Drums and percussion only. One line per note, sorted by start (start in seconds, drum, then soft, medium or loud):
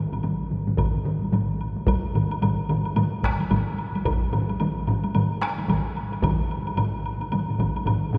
0.12 taiko low-mid medium
0.12 taiko mid medium
0.12 high woodblock soft
0.23 taiko low-mid medium
0.23 taiko mid medium
0.23 taiko high medium
0.23 high woodblock soft
0.51 taiko low-mid medium
0.51 taiko mid medium
0.67 taiko low-mid medium
0.67 taiko mid medium
0.67 taiko high soft
0.77 taiko medium
0.77 taiko low-mid medium
0.77 taiko mid medium
0.77 taiko high medium
0.77 high woodblock soft
0.95 taiko low-mid medium
0.95 taiko mid medium
1.05 taiko low-mid medium
1.05 taiko mid medium
1.22 taiko high soft
1.32 taiko low-mid medium
1.32 taiko mid medium
1.32 taiko high medium
1.32 high woodblock soft
1.61 high woodblock soft
1.77 taiko high soft
1.87 taiko loud
1.87 taiko high medium
1.87 high woodblock medium
2.14 taiko low-mid medium
2.14 taiko mid medium
2.14 high woodblock soft
2.31 taiko high medium
2.31 high woodblock soft
2.42 taiko low-mid medium
2.42 taiko mid medium
2.42 taiko high medium
2.42 high woodblock medium
2.69 taiko low-mid loud
2.69 taiko mid loud
2.69 high woodblock soft
2.85 taiko high medium
2.85 high woodblock soft
2.96 taiko low-mid loud
2.96 taiko mid medium
2.96 taiko high medium
2.96 high woodblock medium
3.23 taiko rim medium
3.23 taiko medium
3.23 taiko high soft
3.23 high woodblock soft
3.40 taiko high medium
3.40 high woodblock soft
3.51 taiko medium
3.51 taiko low-mid medium
3.51 taiko mid medium
3.51 taiko high medium
3.51 high woodblock medium
3.78 high woodblock soft
3.95 taiko high soft
3.95 high woodblock soft
4.05 taiko loud
4.05 taiko high medium
4.05 high woodblock medium
4.33 taiko low-mid loud
4.33 taiko mid medium
4.33 high woodblock soft
4.49 taiko high medium
4.49 high woodblock soft
4.60 taiko low-mid medium
4.60 taiko mid medium
4.60 taiko high medium
4.60 high woodblock medium
4.87 taiko low-mid loud
4.87 taiko mid loud
4.87 high woodblock soft
5.04 taiko high medium
5.04 high woodblock soft
5.15 taiko low-mid medium
5.15 taiko mid loud
5.15 taiko high medium
5.15 high woodblock medium
5.41 taiko rim medium
5.41 taiko high soft
5.41 high woodblock soft
5.58 taiko high medium
5.58 high woodblock soft
5.68 taiko medium
5.68 taiko low-mid medium
5.68 taiko mid medium
5.68 taiko high medium
5.68 high woodblock medium
5.97 high woodblock soft
6.12 taiko high medium
6.12 high woodblock soft
6.22 taiko loud
6.22 taiko low-mid medium
6.22 taiko mid medium
6.22 taiko high medium
6.22 high woodblock medium
6.51 high woodblock soft
6.67 taiko high medium
6.67 high woodblock soft
6.77 taiko low-mid loud
6.77 taiko mid medium
6.77 taiko high medium
6.77 high woodblock medium
7.06 high woodblock soft
7.21 taiko high medium
7.21 high woodblock soft
7.32 taiko low-mid medium
7.32 taiko mid medium
7.32 taiko high medium
7.32 high woodblock medium
7.48 taiko low-mid medium
7.48 taiko mid medium
7.59 taiko medium
7.59 taiko low-mid loud
7.59 taiko mid medium
7.59 taiko high soft
7.59 high woodblock soft
7.76 taiko high medium
7.76 high woodblock soft
7.85 taiko medium
7.85 taiko low-mid medium
7.85 taiko mid medium
7.85 taiko high medium
7.85 high woodblock medium
8.13 taiko low-mid loud
8.13 taiko mid loud
8.13 high woodblock soft